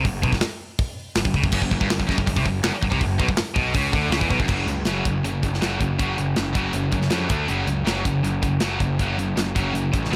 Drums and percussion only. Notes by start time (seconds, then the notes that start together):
0.05 kick, open hi-hat
0.23 kick
0.33 kick, snare
0.41 snare, open hi-hat
0.79 kick, open hi-hat
1.15 snare, open hi-hat
1.25 kick
1.34 kick
1.44 kick
1.52 kick, crash
1.62 kick
1.71 kick
1.81 kick
1.90 snare, open hi-hat
2.00 kick
2.09 kick, snare
2.18 kick
2.27 kick, open hi-hat
2.36 kick
2.46 kick
2.63 snare, open hi-hat
2.83 kick
2.92 kick
3.01 kick, open hi-hat
3.20 kick
3.29 kick
3.37 snare, open hi-hat
3.56 kick
3.74 kick, open hi-hat
3.93 kick
4.12 snare, open hi-hat
4.21 kick
4.30 kick
4.40 kick
4.48 kick, crash
4.68 closed hi-hat
4.85 snare, closed hi-hat
5.05 kick, closed hi-hat
5.25 closed hi-hat
5.43 kick, closed hi-hat
5.54 snare
5.62 snare, closed hi-hat
5.81 kick, closed hi-hat
5.99 kick, closed hi-hat
6.18 closed hi-hat
6.36 snare, closed hi-hat
6.55 kick, closed hi-hat
6.73 closed hi-hat
6.92 kick, closed hi-hat
7.02 snare
7.10 snare, closed hi-hat
7.29 kick, closed hi-hat
7.48 closed hi-hat
7.67 closed hi-hat
7.87 snare, closed hi-hat
8.05 kick, closed hi-hat
8.24 closed hi-hat
8.43 kick, closed hi-hat
8.60 snare, closed hi-hat
8.80 kick, closed hi-hat
8.99 kick, closed hi-hat
9.19 closed hi-hat
9.37 snare, closed hi-hat
9.56 kick, closed hi-hat
9.75 closed hi-hat
9.94 kick, closed hi-hat
10.05 snare